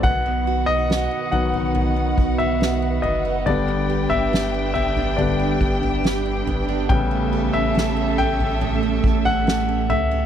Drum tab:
CC |x---------------|----------------|----------------|
SD |----o-------o---|----o-------o---|----o-------o---|
FT |o-----ooo--o--o-|o--o--ooo--o--o-|o-----ooo--o--o-|
BD |o---------o-----|----------o-----|o---------o-----|